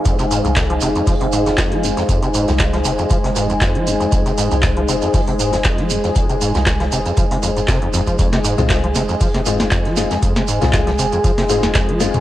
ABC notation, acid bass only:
X:1
M:4/4
L:1/16
Q:"Swing 16ths" 1/4=118
K:Fm
V:1 name="Acid bass" clef=bass
F,, C, A,, F,, F,, F, C, F,, F, C, A,, F,, F,, F, F,, F,, | F,, C, A,, F,, F,, F, C, F,, F, C, A,, F,, F,, F, F,, F,, | F,, C, A,, F,, F,, F, C, F,, F, C, A,, F,, F,, F, F,, F,, | F,, C, A,, F,, F,, F, C, F,, F, C, F,, A,, C, F,, F,, F, |
F,, C, A,, F,, F,, F, C, F,, F, C, A,, F,, F,, F, F,, F,, | F,, C, A,, F,, F,, F, C, F,, F, C, A,, F,, F,, F, F,, F,, |]